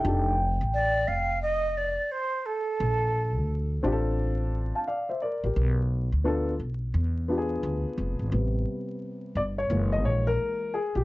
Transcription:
Already playing: G5
0.04 F1 D4 D#4 G4 A4
0.61 A1
0.74 D5
1.08 F1 F5
1.42 D#5
1.77 D5
2.12 C5
2.46 A4
2.80 A#1
3.37 D2
3.83 A1 C4 D4 F4 G4
3.92 A4
4.75 F5 A5
4.88 D5 F5
5.09 C5 E5
5.22 A#4 D5
5.44 A1 G4 A#4
5.56 B1
6.12 D2
6.24 B3 D4 F4 A4
6.60 B1
6.94 E2
7.28 B3 D4 F4 G4
7.38 G#4
7.63 D2
7.98 F1
8.19 G#1
8.32 A1 C3 G3 B3
9.35 G1 D5
9.58 C#5
9.70 F#1 E3 G#3 A#3
9.92 D#5
10.04 A#1 C#5
10.27 A#4
10.74 G#4
10.95 A#1 G4

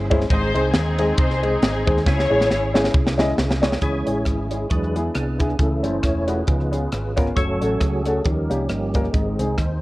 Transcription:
Already playing: G1 C#4 E4 G#4 C5
0.10 G#3 C#4 E4 G#4 C5, kick, ride
0.21 snare
0.30 G#1 G#2 C4 D#4 G#4 C5, kick, ride
0.54 C2 G#3 C4 D#4 G#4 C5, ride
0.72 D#2 C4 D#4 G#4, snare, ride
0.99 G#3 C4 D#4 G#4 D#5, ride
1.16 C2 D#4 G#4 C5, kick, ride
1.30 snare
1.40 G#3 C4 D#4 G#4, ride
1.44 C5
1.62 G#1, snare, ride
1.86 D#2 G#3 C4 D#4 G#4 C5, kick, ride
1.97 snare
2.04 C#2 C#3 C#4 E4 G#4 C#5, kick, snare
2.19 snare
2.30 A1 G#3 C#4 E4 G#4 C#5
2.41 snare
2.50 G#1, snare
2.74 G#3 C#4 E4 G#4 C#5, snare
2.84 snare
2.94 C2, kick
3.07 snare
3.18 G#3 C#4 E4 G#4 D#5, snare
3.38 C2, snare
3.51 snare
3.62 G#3 C#4 E4 G#4 C#5, snare
3.73 snare
3.82 C#2 C#3 E3 G#3 C#4 E4 G#4 C#5, kick, closed hi-hat
4.06 A1 G#3 C#4 E4 G#4, closed hi-hat
4.25 G#1 C#4 E4 G#4, kick, cross-stick, closed hi-hat
4.51 G#3 C#4 E4 G#4, closed hi-hat
4.70 E2 E3 F#3 G#3 B3 D4 G#4 B4, kick, closed hi-hat
4.83 cross-stick
4.95 B3 D4 E4 G#4, closed hi-hat
5.15 C2 B3 D4 G#4, cross-stick, closed hi-hat
5.39 B3 D4 E4 G#4, kick, closed hi-hat
5.49 cross-stick
5.58 C#2 C#3 E3 A3 C#4 E4 A4, kick, closed hi-hat
5.83 F#1 A3 C#4 E4 A4 C5, closed hi-hat
6.02 E1 C#5, kick, cross-stick, closed hi-hat
6.27 A3 C#4 E4 F4 F#4 G#4 B4, closed hi-hat
6.47 C#2 C#3 F3 G#3 B3 D#4 F4, kick, closed hi-hat
6.60 cross-stick
6.71 B3 C#4 F4 G#4, closed hi-hat
6.92 G#1, cross-stick, closed hi-hat
7.16 B3 C#4 F4 A#4, kick, closed hi-hat
7.26 cross-stick
7.34 F#1 F#3 A3 C#4 F#4 A4 C#5, kick, closed hi-hat
7.61 A1 A3 C#4 F#4 A4, closed hi-hat
7.80 C#2 C#4 G#4, kick, cross-stick, closed hi-hat
8.05 A3 C#4 F#4 A4, closed hi-hat
8.24 D#2 D#3 F3 G3 A#3 C#4 D#4 G4 A#4, kick, closed hi-hat
8.49 C2 A#3 C#4 D#4 G4, closed hi-hat
8.69 G1 A#3 C#4 G4, cross-stick, closed hi-hat
8.94 A#3 C#4 D#4 A#4, kick, closed hi-hat
9.04 cross-stick
9.13 G#1 G#2 D#3 G#3 C4 D#4 G#4, kick, closed hi-hat
9.39 C2 G#3 C4 D#4 G#4, closed hi-hat
9.58 D#2 C5, kick, cross-stick, closed hi-hat

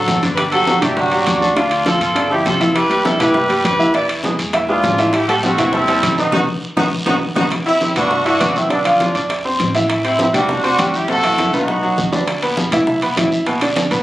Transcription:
Already playing: F#3 F#4 A4
0.07 G1, high bongo, low bongo, high conga, high timbale, low timbale, short guiro
0.22 D3 D4 D5, high conga, high timbale, short guiro
0.36 G4 B4, high bongo, high conga, high timbale, long guiro
0.51 F#3 F#4 G4 A4, high bongo, high conga, high timbale
0.67 F#3 F#4 G4, high bongo, high conga, short guiro
0.81 G2 D3 D4 E4 G4 D5, high bongo, high conga, low conga, high timbale, short guiro
0.96 F#3 D4 F#4 G4, high bongo, high conga, long guiro
1.12 F#3 F#4 G4, high bongo, high conga, high timbale
1.26 D2 D4 F#4, high bongo, low bongo, high conga, high timbale, short guiro
1.41 D3 D4 D5, high conga, short guiro
1.56 D3 D4 F4 D5, high bongo, high conga, high timbale, long guiro
1.71 high bongo, high conga, high timbale
1.85 F3 F4 A4, high bongo, high conga, high timbale, short guiro
2.00 G1 F4 A4, high bongo, high conga, high timbale, short guiro
2.15 D3 D4 D5, high bongo, high conga, high timbale, long guiro
2.30 F3 E4 F4 G4, high bongo, high conga
2.45 C2 F4 A4, high bongo, low bongo, high conga, high timbale, low timbale, short guiro
2.60 E3 E4 E5, high conga, high timbale, short guiro
2.74 G4 B4, high bongo, high conga, high timbale, long guiro
2.90 G3 G4 B4, high bongo, high conga, high timbale
3.04 G3 E4 G4 A4 B4, high bongo, high conga, short guiro
3.19 G2 E3 E4 G4 B4 E5, high bongo, high conga, low conga, high timbale, short guiro
3.34 G3 G4 B4, high bongo, high conga, long guiro
3.49 G3 G4 B4, high bongo, high conga, high timbale
3.64 E2 G4 B4, high bongo, low bongo, high conga, high timbale, low timbale, short guiro
3.79 E3 E4 E5, high conga, short guiro
3.94 E3 E4 B4 D5 E5, high bongo, high conga, high timbale, long guiro
4.09 high bongo, high conga, high timbale
4.23 G#3 G#4 B4, high bongo, high conga, high timbale, short guiro
4.39 E2, high bongo, high timbale, short guiro
4.53 E3 E4 E5, high bongo, high conga, high timbale, long guiro
4.68 G#3 D4 F4 G#4 B4, high bongo, high conga
4.83 A1, high bongo, low bongo, high conga, high timbale, low timbale, short guiro
4.98 E3 E4 E5, high timbale, short guiro
5.13 E4 G4, high bongo, high conga, high timbale, long guiro
5.28 G3 F#4 G4 A4, high bongo, high conga, high timbale
5.43 G3 C4 F#4 G4 A4, high bongo, high conga, short guiro
5.58 E2 E3 E4 E5, high bongo, high conga, low conga, high timbale, short guiro
5.73 G3 C4 E4 G4 A4, high bongo, high conga, long guiro
5.88 G3 G4 A4, high bongo, high conga, high timbale
6.02 B1, high bongo, low bongo, high conga, high timbale, short guiro
6.18 D#3 B3 D#4 D#5, high conga, short guiro
6.32 B1 B3 D#4 F#4, low bongo, high conga, high timbale, long guiro
6.77 B1 B3 D#4 F#4, low bongo, high conga, high timbale, long guiro
7.06 B1 B3 D#4 F#4, low bongo, high conga, high timbale, long guiro
7.36 B1 B3 D#4 F#4, low bongo, high conga, high timbale, long guiro
7.51 high bongo, high conga, high timbale, long guiro
7.66 C4 E4 E5 E6, high bongo, high conga, high timbale
7.81 high bongo, high conga, short guiro
7.96 G2 B3 D4 F#4 B4 B5, high bongo, high conga, low conga, high timbale, short guiro
8.11 high bongo, high conga, long guiro
8.25 D4 E4 F#4 E5 E6, high bongo, high timbale
8.39 B1 B3 B4 B5, high bongo, low bongo, high conga, high timbale, short guiro
8.56 C4 E4, high conga, short guiro
8.70 D3 B3 D4 D5, high bongo, high timbale, long guiro
8.85 F3 D4 F4 F5, high bongo, high conga, high timbale
9.00 high bongo, high conga, high timbale, short guiro
9.15 E2 D4 D5 D6, high bongo, high conga, high timbale, short guiro
9.30 high bongo, high conga, high timbale, long guiro
9.45 C4 C5 C6, high bongo, high conga
9.60 A1, high bongo, low bongo, high conga, high timbale, short guiro
9.75 E3 E4 E5, high timbale, short guiro
9.89 high bongo, high conga, high timbale, long guiro
10.04 C4 E4 C5 C6, high bongo, high conga, high timbale
10.19 C4 E4, high bongo, high conga, short guiro
10.33 E2 G3 D4 F#4 G4 G5, high bongo, high conga, low conga, high timbale, short guiro
10.49 high bongo, high conga, low conga, long guiro
10.63 C4 D4 F#4 C5 C6, high bongo, high conga, high timbale
10.78 F#2 G3 G4 G5, high bongo, low bongo, high conga, high timbale, short guiro
10.94 E4 G4, high conga, short guiro
11.08 C3 C4 F#4 A4 C5, high bongo, high timbale, long guiro
11.23 E3 E4 E5, high bongo, high conga, high timbale
11.38 high bongo, high conga, high timbale, short guiro
11.53 B1 B3 D#4 F#4 B4 B5, high bongo, high conga, high timbale, short guiro
11.68 high bongo, high conga, long guiro
11.83 F#3 F#4 F#5, high bongo, high conga
11.98 E2, high bongo, low bongo, high conga, short guiro
12.12 D3 D4 D5, low timbale, short guiro
12.28 high bongo, high conga, high timbale, long guiro
12.42 B3 B4 B5, high bongo, high conga, high timbale
12.57 high bongo, high conga, short guiro
12.72 B1 E3 E4 E5, high bongo, high conga, low conga, high timbale, short guiro
12.87 high bongo, high conga, long guiro
13.02 B3 B4 B5, high bongo, high conga, high timbale
13.16 E2 E3 E4 E5, high bongo, low bongo, high conga, high timbale, low timbale, short guiro
13.32 high conga, short guiro
13.46 B2 B3 B4, high bongo, high conga, high timbale, long guiro
13.61 D3 D4 D5, high bongo, high conga, high timbale
13.76 high bongo, high conga, high timbale, short guiro
13.91 B1 B3 B4 B5, high bongo, high timbale, short guiro

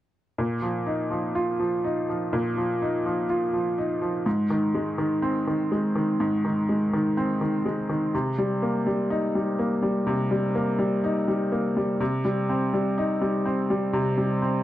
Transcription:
0.38 A#2
0.62 F3
0.86 D#4
1.10 F3
1.35 F4
1.59 F3
1.84 D#4
2.09 F3
2.33 A#2
2.57 F3
2.82 D#4
3.06 F3
3.30 F4
3.53 F3
3.78 D#4
4.02 F3
4.26 G#2
4.50 D#3
4.75 G#3
4.98 D#3
5.22 C4
5.47 D#3
5.72 G#3
5.96 D#3
6.20 G#2
6.45 D#3
6.69 G#3
6.93 D#3
7.17 C4
7.41 D#3
7.65 G#3
7.89 D#3
8.14 C3
8.38 G3
8.62 A#3
8.87 G3
9.10 D#4
9.35 G3
9.59 A#3
9.83 G3
10.07 C3
10.31 G3
10.55 A#3
10.79 G3
11.04 D#4
11.28 G3
11.52 A#3
11.77 G3
12.00 C3
12.25 G3
12.50 C4
12.74 G3
12.98 D#4
13.21 G3
13.46 C4
13.70 G3
13.93 C3
14.18 G3
14.42 C4

